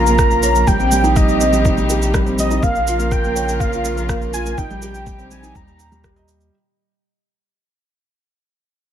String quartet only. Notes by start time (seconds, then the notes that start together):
Already playing: C#3 F3 A#3 F4 A#4
0.68 C3 G3 D#4 G4
2.63 C#3 F3 F4 A#4
4.58 C3 G3 D#4 G4
5.56 A#2 D#3